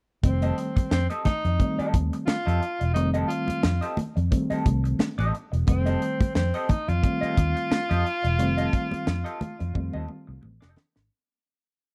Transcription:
0.23 fingered electric bass F1, reed electric piano D#3 G3 A3 C4, tenor saxophone C4, muted clean electric guitar stroke, kick, closed hi-hat
0.42 clean electric guitar C4 G4 A4 D#5, closed hi-hat, muted conga
0.57 muted clean electric guitar stroke, closed hi-hat
0.76 muted clean electric guitar stroke, muted fingered electric bass stroke, kick, closed hi-hat, high conga
0.91 fingered electric bass F2, tenor saxophone C4, muted clean electric guitar stroke, snare, muted conga
1.10 clean electric guitar C4 G4 A4 D#5, closed hi-hat, muted conga
1.25 tenor saxophone D#4, muted fingered electric bass stroke, muted clean electric guitar stroke, kick, snare, closed hi-hat, high conga, low conga
1.45 fingered electric bass F2, muted clean electric guitar stroke, closed hi-hat, low conga
1.59 reed electric piano D#3 G3 A3 C4, muted clean electric guitar stroke, kick, closed hi-hat
1.79 clean electric guitar C4 G4 A4 D#5, muted fingered electric bass stroke, closed hi-hat
1.94 fingered electric bass D#2, muted clean electric guitar stroke, kick, closed hi-hat, high conga
2.13 muted clean electric guitar stroke, closed hi-hat
2.26 tenor saxophone F4, muted clean electric guitar stroke, snare, muted conga, high conga
2.46 fingered electric bass F2, clean electric guitar C4 G4 A4 D#5, closed hi-hat
2.61 muted clean electric guitar stroke, closed hi-hat
2.80 fingered electric bass E1, muted clean electric guitar stroke, closed hi-hat
2.94 fingered electric bass F1, reed electric piano D#3 G3 A3 C4, tenor saxophone D#4, muted clean electric guitar stroke, closed hi-hat
3.14 clean electric guitar C4 G4 A4 D#5, closed hi-hat, muted conga
3.28 tenor saxophone F4, muted clean electric guitar stroke, closed hi-hat
3.47 muted clean electric guitar stroke, muted fingered electric bass stroke, closed hi-hat, high conga
3.63 fingered electric bass F2, muted clean electric guitar stroke, snare, muted conga
3.81 clean electric guitar C4 G4 A4 D#5, closed hi-hat
3.97 muted clean electric guitar stroke, muted fingered electric bass stroke, closed hi-hat, high conga, low conga
4.16 fingered electric bass F2, muted clean electric guitar stroke, closed hi-hat, low conga
4.31 reed electric piano D#3 G3 A3 C4, muted clean electric guitar stroke, kick, closed hi-hat, muted conga
4.50 clean electric guitar C4 G4 A4 D#5, muted fingered electric bass stroke, closed hi-hat, muted conga
4.66 fingered electric bass C2, muted clean electric guitar stroke, kick, closed hi-hat, high conga
4.84 muted clean electric guitar stroke, closed hi-hat
4.99 muted clean electric guitar stroke, muted fingered electric bass stroke, snare, muted conga, high conga
5.18 fingered electric bass A1, clean electric guitar C4 G4 A4 D#5, closed hi-hat, muted conga
5.33 muted clean electric guitar stroke, closed hi-hat
5.52 fingered electric bass E1, muted clean electric guitar stroke, closed hi-hat
5.67 fingered electric bass F1, reed electric piano D#3 G3 A3 C4, tenor saxophone C4, muted clean electric guitar stroke, kick, closed hi-hat, muted conga
5.86 clean electric guitar C4 G4 A4 D#5, closed hi-hat, muted conga
6.01 muted clean electric guitar stroke, closed hi-hat
6.20 muted clean electric guitar stroke, muted fingered electric bass stroke, kick, closed hi-hat, high conga
6.35 fingered electric bass F2, tenor saxophone C4, muted clean electric guitar stroke, snare, muted conga
6.54 clean electric guitar C4 G4 A4 D#5, closed hi-hat
6.69 tenor saxophone D#4, muted clean electric guitar stroke, muted fingered electric bass stroke, kick, closed hi-hat, high conga, low conga
6.88 fingered electric bass F2, tenor saxophone F4, muted clean electric guitar stroke, closed hi-hat, low conga
7.02 reed electric piano D#3 G3 A3 C4, muted clean electric guitar stroke, kick, closed hi-hat, muted conga
7.21 clean electric guitar C4 G4 A4 D#5, muted fingered electric bass stroke, closed hi-hat
7.37 fingered electric bass D#2, muted clean electric guitar stroke, kick, closed hi-hat, high conga
7.55 muted clean electric guitar stroke, closed hi-hat
7.71 muted clean electric guitar stroke, snare, muted conga, high conga
7.89 fingered electric bass F2, clean electric guitar C4 G4 A4 D#5, closed hi-hat, muted conga
8.05 muted clean electric guitar stroke, closed hi-hat
8.23 fingered electric bass E1, muted clean electric guitar stroke, closed hi-hat
8.38 fingered electric bass F1, reed electric piano D#3 G3 A3 C4, muted clean electric guitar stroke, closed hi-hat, muted conga
8.57 clean electric guitar C4 G4 A4 D#5, closed hi-hat, muted conga
8.72 muted clean electric guitar stroke, kick, closed hi-hat
8.91 muted clean electric guitar stroke, muted fingered electric bass stroke, closed hi-hat, high conga
9.06 fingered electric bass F2, muted clean electric guitar stroke, snare, muted conga
9.24 clean electric guitar C4 G4 A4 D#5, closed hi-hat
9.40 muted clean electric guitar stroke, muted fingered electric bass stroke, closed hi-hat, high conga, low conga
9.59 fingered electric bass F2, muted clean electric guitar stroke, closed hi-hat, low conga
9.74 fingered electric bass F2, reed electric piano D#3 G3 A3 C4, muted clean electric guitar stroke, kick, muted conga
9.93 fingered electric bass D#2, clean electric guitar C4 G4 A4 D#5, muted conga
10.08 muted clean electric guitar stroke, high conga
10.27 fingered electric bass C2, muted clean electric guitar stroke
10.41 fingered electric bass A1, muted clean electric guitar stroke, muted conga, high conga
10.61 fingered electric bass F1, clean electric guitar C4 G4 A4 D#5, snare, muted conga
10.76 muted clean electric guitar stroke, snare, low conga
10.95 fingered electric bass G#1, muted clean electric guitar stroke, snare

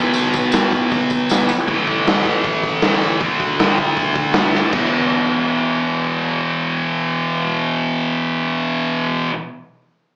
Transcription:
Already playing: distorted electric guitar B2 F#3
0.00 distorted electric guitar B3
0.14 open hi-hat, tambourine
0.34 kick, tambourine
0.52 snare, open hi-hat, tambourine
0.71 kick, open hi-hat, tambourine
0.91 kick, open hi-hat, tambourine
1.10 kick, open hi-hat, tambourine
1.29 snare, open hi-hat, tambourine
1.49 open hi-hat, tambourine
1.67 distorted electric guitar A2 E3 A3, kick, open hi-hat
1.87 kick, open hi-hat
2.07 snare, open hi-hat
2.25 kick, open hi-hat
2.44 kick, open hi-hat
2.64 kick, open hi-hat
2.82 snare, open hi-hat
3.01 open hi-hat
3.20 distorted electric guitar D3 A3 D4, kick, open hi-hat
3.40 kick, open hi-hat
3.59 snare, open hi-hat
3.78 kick, open hi-hat
3.96 kick, open hi-hat
4.15 kick, open hi-hat
4.33 snare, open hi-hat
4.55 snare
4.72 distorted electric guitar E2 B2 E3, kick, crash

